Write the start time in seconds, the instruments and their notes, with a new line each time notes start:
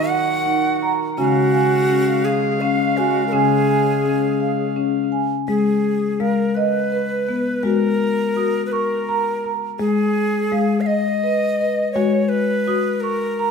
Already playing: woodwind section A#2 D#3 F#4, marimba D#3 D#4 A#5, native american-style wooden flute D#5
0.09 native american-style wooden flute F#5, marimba F#5
0.46 marimba D#4
0.82 marimba A#5
1.17 marimba C#3 C#4 G#5, woodwind section C#3 G#3 F5, native american-style wooden flute F#4
1.54 marimba G#5
1.90 marimba C#4
2.25 native american-style wooden flute G#4, marimba F5
2.61 marimba C#4, native american-style wooden flute F5
2.97 native american-style wooden flute F#4, marimba G#5
3.28 native american-style wooden flute A#4
3.32 marimba C#3 C#4 G#5, native american-style wooden flute G#4
3.69 marimba G#5
4.05 marimba C#4
4.40 marimba F5
4.76 marimba C#4
5.12 marimba G#5
5.48 marimba G#3, native american-style wooden flute G#4
6.20 marimba G#3 F5, native american-style wooden flute A#4
6.55 native american-style wooden flute B4, marimba D#5
6.92 marimba B4
7.29 marimba B3
7.63 marimba G#3 F#4, native american-style wooden flute A#4
8.37 marimba F#4 D#6
8.66 native american-style wooden flute B4
8.72 native american-style wooden flute A#4, marimba C#6
9.09 marimba A#5
9.44 marimba A#5
9.79 marimba G#3, native american-style wooden flute G#4
10.52 marimba G#3 F5
10.81 native american-style wooden flute F5
10.86 native american-style wooden flute D#5, marimba D#5
11.24 marimba B4
11.61 marimba B4
11.92 marimba G#3 F#4, native american-style wooden flute C#5
12.29 native american-style wooden flute B4
12.67 marimba F#4 D#6
13.01 native american-style wooden flute A#4, marimba C#6
13.39 marimba A#5